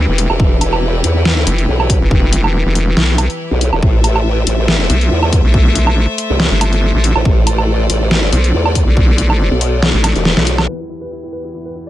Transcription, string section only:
Already playing: E3 E4 G4 B4
3.83 A3 A4 C5 E5
7.25 D5
10.68 E2 E3 B3 G4

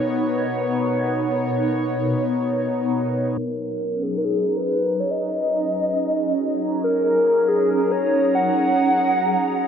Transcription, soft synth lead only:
3.38 A#4
4.03 G#4
4.18 A#4
4.25 G#4
4.57 B4
5.00 C#5
5.11 D#5
6.84 A#4
7.48 G#4
7.70 A#4
7.91 C#5
8.35 F#5

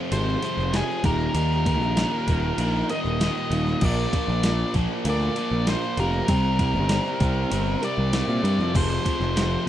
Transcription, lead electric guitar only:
0.13 C5
0.76 G#4
1.05 A#4
2.90 D#5
3.85 D5
5.10 D5
5.69 C5
6.00 A#4
7.85 D5
8.76 C5

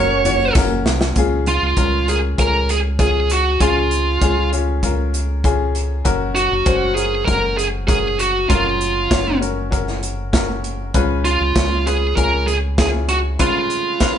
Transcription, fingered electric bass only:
Already playing: F#1
0.55 F#1
0.86 C2
1.16 C#2
1.62 C#2
1.77 C#2
2.39 C#2
3.61 C#2
4.22 C#2
6.05 F#1
6.52 F#1
6.66 F#1
7.28 F#1
8.50 F#1
9.11 F#1
10.95 C#2
11.41 C#2
11.56 C#2
12.17 C#2

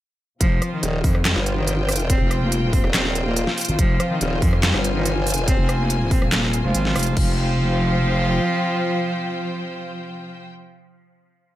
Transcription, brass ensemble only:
0.62 F3 C4 F4
1.46 F3 C4 F4
2.31 F3 C4 F4
4.00 F3 C4 F4
5.69 F3 C4 F4
6.64 F3 C4 F4
7.17 F3 C4 F4

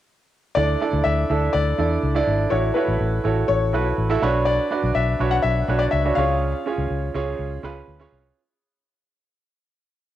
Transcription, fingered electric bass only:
0.57 D2
0.93 D2
1.06 D2
1.30 D2
1.54 D2
1.78 E2
2.03 C#2
2.27 G#1
2.52 A1
2.88 A1
3.00 A1
3.25 A1
3.49 A1
3.74 B1
3.98 A1
4.22 B1
4.83 B1
4.95 B1
5.20 B1
5.44 B1
5.68 B1
5.93 C#2
6.17 C#2
6.78 C#2
6.90 C#2
7.15 C#2
7.39 C#2
7.63 C#2
7.88 D2
8.12 C2

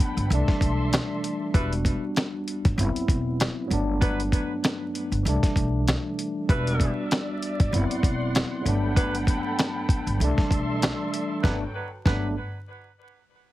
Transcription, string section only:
Already playing: A4 F#5 G5 B5
0.32 A4 D5 E5 C6
6.50 D5 E5
7.74 F#5 C6
8.67 A4 F#5 G5 B5
10.21 A4 D5 E5 C6
11.44 F#3 A4 B4 G5

